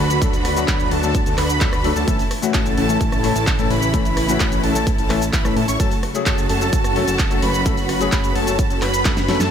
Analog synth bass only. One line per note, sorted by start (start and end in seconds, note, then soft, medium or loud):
0.00 0.66 D2 loud
0.68 0.89 D2 loud
0.91 1.24 D2 medium
1.26 1.36 D2 loud
1.38 1.94 D2 loud
1.96 2.05 D2 medium
2.08 2.21 A1 loud
2.54 2.75 A1 loud
2.78 2.98 A1 loud
3.01 3.33 A1 loud
3.36 3.68 A1 loud
3.71 4.38 A1 loud
4.40 4.61 A1 loud
4.64 4.96 A1 loud
4.98 5.31 A1 loud
5.33 5.54 A1 loud
5.57 5.66 A2 loud
5.68 5.77 A1 loud
5.80 5.93 F#1 loud
6.26 6.47 F#1 loud
6.50 6.70 F#1 loud
6.73 7.05 F#1 loud
7.08 7.40 F#1 loud
7.43 8.10 F#1 loud
8.12 8.33 F#1 loud
8.36 8.68 F#1 medium
8.70 8.80 F#1 loud
8.82 9.38 F#1 loud
9.40 9.50 F#2 loud